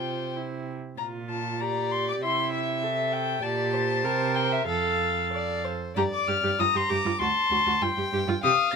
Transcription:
Already playing: C3 F4 C5 G5
0.36 E4
0.98 A#2 F4 A#5
1.30 A5
1.60 G4 D5 A#5
1.91 C6
2.09 D6
2.22 C3 E4 E5 C6
2.53 E5
2.83 A4
3.12 G5
3.42 A#2 G4 D5 A5
3.74 C5
4.04 C3 A#4
4.36 G5
4.52 E5
4.66 F2 A4 F5
5.33 D5
5.64 C5
5.96 G2 G4 D5 A#5
6.14 D6
6.28 G2 G4 F6
6.43 G2 G4
6.59 G2 F4 A#5 D#6
6.74 G2 G4 C6
6.89 G2 G4 D6
7.05 G2 F4
7.20 D2 F#4 A5 C6
7.51 D2 F#4
7.66 D2 F#4
7.82 G2 F4 G5
7.97 G2 G4
8.12 G2 G4
8.28 G2 F4
8.43 C3 G4 F5 D#6

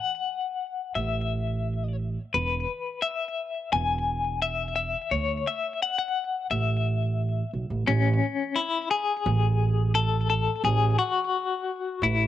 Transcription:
Already playing: F#5
0.95 A1 E5
2.34 E1 B4
3.02 E5
3.73 E1 G#5
4.42 E5
4.76 E5
5.11 D2 C#5
5.47 E5
5.82 F#5
5.98 F#5
6.51 A1 E5
7.53 B1
7.70 A1
7.87 A1 C#4
8.56 E4
8.91 G#4
9.26 A1
9.95 A4
10.29 A4
10.63 A1 G#4
10.98 F#4
12.02 A1 E4

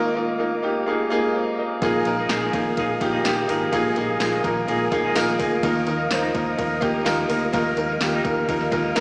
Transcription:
Already playing: D#3 A#3 D#4 F4 A#4 C5 D#5 F5 D6
0.15 A#3 D#4 F4 A#4
0.38 A#3 D#4 F4 A#4
0.62 A#3 D#4 F4 G4
0.86 A#3 D#4 F4 G#4
1.10 A#3 D#4 F4 G#4
1.35 C5 F5
1.59 A#4 D#5
1.82 A#1 A#2 F3 A#3 D#4 F4 G#4 A#4 G#5 D#6, kick, ride
2.05 A#1 A#3 D#4 F4 A#4, ride
2.17 F3 A#3 D#4 G#4
2.29 A#1 A#3 D#4 F4 G#4, snare, ride, tambourine
2.41 A#2 D#3 F3 A#3 D#4 G#4
2.53 A#1 A#3 D#4 F4 G#4, kick, ride
2.77 A#1 F3 A#3 D#4 F4 G#4, kick, ride
3.00 A#1 A#3 D#4 F4 G4, kick, ride
3.13 A#2 D#3 F3 A#3 D#4 G#4
3.24 A#1 A#3 D#4 F4 G4, snare, ride, tambourine
3.48 G#1 F3 A#3 D#4 F4 G#4 A#4, open hi-hat, ride
3.72 A#1 A#2 F3 A#3 D#4 F4 G#4, kick, ride
3.96 A#1 A#3 D#4 F4 G#4, ride
4.08 F3 A#3 D#4 G#4
4.20 A#1 A#3 D#4 F4 G#4, snare, ride, tambourine
4.32 A#2 D#3 F3 A#3 D#4 G#4
4.43 A#1 A#3 D#4 F4 A#4, kick, ride
4.67 A#1 F3 A#3 D#4 F4 G#4, ride
4.91 A#1 A#3 D#4 F4 G#4, kick, ride
5.03 A#2 D#3 F3 A#3 D#4 G#4
5.15 A#1 A#3 D#4 F4 A#4, snare, ride, tambourine
5.39 D2 F3 A#3 D#4 F4 G#4, kick, open hi-hat, ride
5.63 D#2 D#3 F3 A#3 D#4 F4 A#4 D#5 F5 D#6, kick, ride
5.86 D#2 A#3 D#4 F4 A#4, ride
5.99 A#3 D#4 A#4
6.10 D#2 A#3 D#4 F4 C5, snare, ride, tambourine
6.22 D#3 F3 A#3 D#4 A#4
6.34 D#2 A#3 D#4 F4 A#4, kick, ride
6.57 D#2 F3 A#3 D#4 F4 A#4, kick, ride
6.81 D#2 A#3 D#4 F4 G4, kick, ride
6.93 D#3 F3 A#3 D#4 A#4
7.05 D#2 A#3 D#4 F4 A#4, snare, ride, tambourine
7.28 D2 F3 A#3 D#4 F4 A#4, open hi-hat, ride
7.53 D#2 D#3 F3 A#3 D#4 F4 A#4 F6, kick, ride
7.76 D#2 A#3 D#4 F4 A#4, ride
7.89 A#3 D#4 A#4
8.00 D#2 A#3 D#4 F4 G4, snare, ride, tambourine
8.13 D#3 F3 A#3 D#4 A#4
8.24 D#2 A#3 D#4 F4 A#4, kick, ride
8.48 D#2 F3 A#3 D#4 F4 A#4, kick, ride
8.60 snare
8.71 D#2 A#3 D#4 F4 A#4, kick, ride
8.84 D#3 F3 A#3 D#4 A#4
8.95 D#2 A#3 D#4 F4 A#4, snare, ride, tambourine

